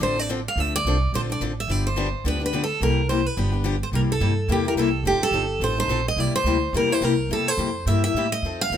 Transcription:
0.00 A1 D3 F3 C4 D4 A4 C5
0.16 C4 D4 A4 D5
0.29 D3 F3 C4 D4 A4
0.48 F5
0.56 D2 D3 F3 C4 D4 A4
0.60 E5
0.76 D5
0.85 C2 D3 F3 C4 D4 A4
1.13 A#1 D3 F3 C4 D4 A4 C5
1.30 C4 D4 A4 D5
1.40 A1 D3 F3 C4 D4 A4
1.60 E5
1.68 G1 D3 F3 B3 D4 G4 D5
1.87 C5
1.96 D3 F3 B3 D4 G4
2.24 D2 D3 F3 B3 D4 G4 B4
2.40 B3 D4 G4
2.46 B4
2.53 D3 F3 B3 D4 G4
2.64 A4
2.81 C2 C3 G3 A#3 E4 G4 A#4
3.09 C3 G3 A#3 E4 G4 C5
3.26 B4
3.37 G1 D3 F3 B3 D4 G4
3.52 B3 D4 G4
3.64 D3 F3 B3 D4 G4
3.83 C5
3.92 C2 C3 G3 A#3 E4 G4 A#4
4.12 A4
4.20 G2 C3 G3 A#3 E4 G4
4.48 E2 C3 G3 A#3 E4 G4
4.65 A#3 E4 G4 A#4
4.75 C2 C3 G3 A#3 E4 G4 A4
5.04 F1 F3 C4 D#4 G4 A4
5.20 A4, muted upright bass stroke
5.31 G1 F3 C4 D#4 A4
5.60 A1 F3 C4 D#4 A4 C5
5.77 C4 D#4 A4 C5
5.88 A#1 F3 C4 D#4 A4
6.08 D#5
6.16 C2 C3 G3 A#3 E4 G4 D5
6.33 C5, muted upright bass stroke
6.44 D2 C3 G3 A#3 E4 G4
6.73 E2 C3 G3 A#3 E4 G4 A#4
6.90 A#3 E4 G4 C5
7.01 C2 C3 G3 A#3 E4 G4 A#4
7.29 E2 C3 G3 A#3 E4 G4 A4
7.48 C5
7.57 F2 C3 G3 A#3 E4 G4
7.86 G2 C3 G3 A#3 E4 G4 E5
8.04 A#3 E4 G4 E5
8.14 A2 C3 G3 A#3 E4 G4
8.32 D#5
8.42 F2 F3 C4 D#4 A4
8.61 F5
8.70 D#2 F3 C4 D#4 A4

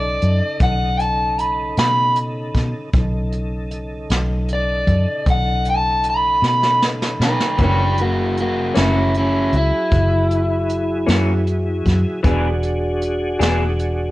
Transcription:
Already playing: B1 C#3 D#4 A4 D5
0.22 F#2, closed hi-hat
0.60 B1 F#5, kick, closed hi-hat
1.00 A5, closed hi-hat
1.38 B5, closed hi-hat
1.77 B2 B5, snare, closed hi-hat
2.15 closed hi-hat
2.54 B2, kick, snare, closed hi-hat
2.93 B1 C#3 D#4 A4, kick, closed hi-hat
3.32 closed hi-hat
3.71 closed hi-hat
4.10 B1, snare, closed hi-hat
4.48 closed hi-hat
4.53 D5
4.87 F#2, kick, closed hi-hat
5.26 B1, kick, closed hi-hat
5.30 F#5
5.65 closed hi-hat
5.70 A5
6.03 closed hi-hat
6.10 B5
6.42 B2, snare
6.47 B5
6.63 snare
6.82 snare
7.02 snare
7.20 B2 D#4 B4, snare
7.40 snare
7.57 F#1 F#2 E3 F#3 A#3 C#4 E4 G#4, kick, closed hi-hat
7.63 D4 B4
7.97 F#4, closed hi-hat
8.02 A#3
8.37 A#3 F#4, closed hi-hat
8.74 F#1 F#2 E3 A#3 C#4 E4, snare, closed hi-hat
9.14 C#4 E4, closed hi-hat
9.52 C#2 E4, closed hi-hat
9.91 F#1, kick, closed hi-hat
10.31 closed hi-hat
10.69 closed hi-hat
11.07 F#2 E3 A#3 C#4, snare, closed hi-hat
11.47 closed hi-hat
11.85 F#2, kick, snare, closed hi-hat
12.23 E1 E3 B3 D4 F#4 G#4, kick, closed hi-hat
12.63 closed hi-hat
13.01 closed hi-hat
13.39 E1 E3 B3 D4 G#4, snare, closed hi-hat
13.79 closed hi-hat

